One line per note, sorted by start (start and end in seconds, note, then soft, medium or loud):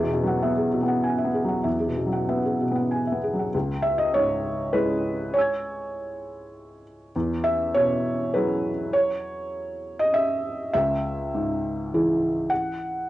0.00 1.62 E2 medium
0.00 0.12 B2 soft
0.00 0.22 G#4 soft
0.00 0.43 E5 medium
0.13 0.37 B2 soft
0.23 0.55 F#3 soft
0.23 0.51 F#5 medium
0.43 0.75 B3 soft
0.43 0.67 E5 medium
0.57 0.82 G#4 soft
0.73 0.97 B2 soft
0.83 1.16 B3 soft
0.88 1.12 F#5 soft
1.04 1.28 G#5 soft
1.18 1.43 E5 soft
1.25 1.58 B3 soft
1.34 1.59 G#4 soft
1.44 1.78 F#3 soft
1.44 1.74 F#5 soft
1.64 3.49 E2 soft
1.64 1.90 E5 soft
1.80 2.06 G#4 soft
1.86 1.95 B2 soft
1.97 2.23 B2 soft
2.06 2.41 F#3 soft
2.13 2.38 F#5 soft
2.29 2.63 B3 soft
2.29 2.54 E5 soft
2.45 2.70 G#4 soft
2.61 2.86 B2 soft
2.71 3.05 B3 soft
2.71 3.01 F#5 soft
2.91 3.17 G#5 soft
3.07 3.32 E5 soft
3.12 3.45 B3 soft
3.23 3.48 G#4 soft
3.33 3.54 F#3 soft
3.39 3.54 F#5 soft
3.54 5.30 C#2 medium
3.82 3.98 E5 medium
3.98 4.14 D#5 medium
4.14 5.11 G#2 soft
4.14 4.74 C#5 medium
4.73 7.10 G#3 soft
4.73 7.10 E4 soft
4.73 7.10 G#4 soft
4.73 5.34 B4 medium
5.34 6.84 C#5 medium
5.34 7.11 G#5 soft
5.38 7.12 E6 soft
5.38 7.14 G#6 soft
7.16 8.90 E2 medium
7.44 7.74 E5 medium
7.75 8.70 B2 soft
7.75 8.33 C#5 medium
8.34 10.70 F#3 soft
8.34 10.70 E4 soft
8.34 10.70 G#4 soft
8.34 8.93 B4 medium
8.93 9.98 C#5 medium
9.99 10.14 D#5 medium
10.14 10.72 E5 medium
10.73 12.47 C#2 medium
10.73 12.50 E5 medium
11.34 12.28 G#2 soft
11.94 13.10 E3 soft
11.94 13.10 E4 soft
11.94 13.10 G#4 soft
12.50 13.10 F#5 medium